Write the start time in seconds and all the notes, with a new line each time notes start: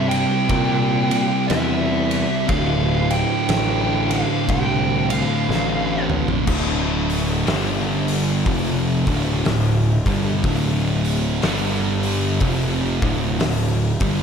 Already playing: G2 C3 G3 C4
0.09 G3 C4 G5, ride
0.14 C3
0.48 A#2 C3 G3 C4, kick, ride
1.10 C3 G3 C4, ride
1.48 E2 C3 G3 C4 E5, snare, ride
2.11 ride
2.48 D1 D2 A2 D3 F5, kick, ride
3.10 G5, ride
3.49 A1, snare, ride
4.09 D2 A2 D3 F5, ride
4.48 C2 D2 A2 D3 G5, kick, ride
5.10 D2 A2 D3 F5, ride
5.48 A1 D2 A2 D3, snare
6.10 mid tom
6.28 floor tom
6.47 D1 D2 A2 D3, kick, crash
7.09 open hi-hat
7.47 G1 G2 D3 G3, snare, open hi-hat
8.08 open hi-hat
8.46 F1 F2 C3 F3, kick, open hi-hat
9.07 D1 D2 A2 D3, kick, open hi-hat
9.45 D1 D2 A2, snare, open hi-hat
10.06 G1 G2 D3 G3, kick, open hi-hat
10.44 D1 D2 A2 D3, kick, open hi-hat
11.05 open hi-hat
11.42 G1 G2 D3 G3, snare, open hi-hat
12.03 open hi-hat
12.40 F1 F2 C3 F3, kick, open hi-hat
13.02 D1 D2 A2 D3, kick, open hi-hat
13.40 D1 D2 A2, snare, open hi-hat
14.00 G1 G2 D3 G3, kick, open hi-hat